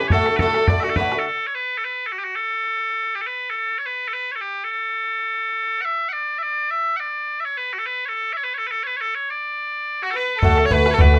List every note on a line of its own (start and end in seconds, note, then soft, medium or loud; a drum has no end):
0.00 0.12 E3 soft
0.00 0.13 C#4 soft
0.00 0.12 G4 medium
0.08 0.27 A2 medium
0.08 0.38 A4 medium
0.08 0.12 C#5 medium
0.08 bodhran medium
0.12 0.28 D3 medium
0.12 0.28 A3 medium
0.12 0.26 F#4 medium
0.12 0.37 A4 medium
0.26 0.41 A3 soft
0.26 0.40 F#4 soft
0.26 bodhran medium
0.30 0.40 D3 soft
0.37 0.56 A2 medium
0.37 0.68 A4 medium
0.37 0.40 B4 medium
0.37 bodhran medium
0.41 0.56 D3 medium
0.41 0.56 A3 loud
0.41 0.55 F#4 medium
0.41 0.71 A4 medium
0.54 0.70 A3 soft
0.54 0.69 F#4 soft
0.54 bodhran medium
0.59 0.69 D3 soft
0.68 0.84 A2 soft
0.68 0.85 D3 soft
0.68 0.85 A3 medium
0.68 0.80 D5 medium
0.68 1.13 D5 medium
0.68 bodhran medium
0.72 0.83 F#4 medium
0.80 0.90 F#4 medium
0.80 0.97 F#4 soft
0.80 0.84 E5 medium
0.80 bodhran medium
0.86 0.97 D3 soft
0.86 0.98 A3 soft
0.86 0.96 A4 medium
0.96 1.13 A2 medium
0.96 1.14 D3 medium
0.96 1.13 A3 medium
0.96 1.19 B4 loud
0.96 bodhran medium
1.00 1.11 F#4 medium
1.12 1.27 D3 soft
1.12 1.27 A3 soft
1.12 1.26 F#4 medium
1.12 bodhran medium
1.19 1.26 A4 medium
1.26 1.47 A4 medium
1.47 1.55 C#5 medium
1.55 1.78 B4 medium
1.78 1.84 A4 medium
1.84 2.06 B4 medium
2.06 2.12 A4 medium
2.12 2.19 F#4 medium
2.19 2.24 G4 medium
2.24 2.35 F#4 medium
2.35 2.41 A4 medium
2.41 3.15 A4 medium
3.15 3.21 G4 medium
3.21 3.27 A4 medium
3.27 3.50 B4 medium
3.50 3.56 A4 medium
3.56 3.79 A4 medium
3.79 3.86 C#5 medium
3.86 4.08 B4 medium
4.08 4.13 A4 medium
4.13 4.32 B4 medium
4.32 4.36 C#5 medium
4.36 4.41 A4 medium
4.41 4.64 G4 medium
4.64 4.71 A4 medium
4.71 5.81 A4 medium
5.81 6.09 E5 medium
5.81 5.85 F#5 medium
6.09 6.13 F#5 medium
6.13 6.39 D5 medium
6.39 6.43 E5 medium
6.43 6.71 D5 medium
6.71 6.97 E5 medium
6.96 7.40 D5 medium
6.96 7.00 F#5 medium
7.40 7.45 E5 medium
7.45 7.57 C#5 medium
7.57 7.73 B4 medium
7.73 7.79 F#4 medium
7.79 7.86 A4 medium
7.86 8.05 B4 medium
8.05 8.14 A4 medium
8.05 8.09 C#5 medium
8.14 8.33 A4 medium
8.33 8.44 C#5 medium
8.33 8.37 E5 medium
8.44 8.54 B4 medium
8.54 8.58 C#5 medium
8.58 8.67 A4 medium
8.67 8.71 B4 medium
8.71 8.84 A4 medium
8.84 8.96 B4 medium
8.84 8.87 C#5 medium
8.96 9.01 C#5 medium
9.01 9.15 A4 medium
9.15 9.30 C#5 medium
9.30 10.03 D5 medium
10.02 10.14 F#4 medium
10.02 10.11 F#4 medium
10.11 10.17 A4 medium
10.15 10.35 B4 medium
10.15 10.39 B4 medium
10.37 10.42 A4 medium
10.37 10.44 A4 medium
10.42 10.65 D2 medium
10.42 10.57 A2 medium
10.42 10.58 D3 medium
10.42 10.58 A3 medium
10.42 10.56 F#4 loud
10.42 10.63 A4 medium
10.42 10.66 A4 medium
10.42 bodhran medium
10.50 bodhran soft
10.57 10.71 D3 soft
10.57 10.71 A3 soft
10.57 10.71 F#4 soft
10.57 bodhran medium
10.65 10.73 C#5 medium
10.65 10.73 C#5 loud
10.71 10.93 D2 loud
10.71 10.86 A2 medium
10.71 10.87 D3 medium
10.71 10.86 A3 medium
10.71 10.84 F#4 medium
10.71 10.95 B4 medium
10.71 10.91 B4 medium
10.71 bodhran medium
10.79 bodhran soft
10.85 10.98 D3 soft
10.85 10.99 A3 soft
10.85 10.99 F#4 medium
10.85 bodhran medium
10.91 11.01 A4 medium
10.91 11.01 A4 loud
10.91 10.94 C#5 loud
10.98 11.19 D2 loud
10.98 11.14 A2 medium
10.98 11.15 D3 medium
10.98 11.14 A3 medium
10.98 11.13 F#4 medium
10.98 11.19 B4 medium
10.98 bodhran medium
11.14 11.19 A3 medium
11.14 11.19 F#4 medium
11.14 bodhran medium